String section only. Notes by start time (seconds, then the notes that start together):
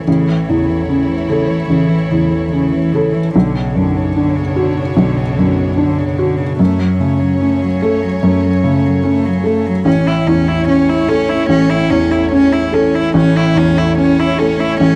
0.08 A3 E4 C#5
3.35 B3 D4 C#5
6.59 A3 C#4 C#5
9.86 A3 C#4 C#5
13.15 A3 C#4 C#5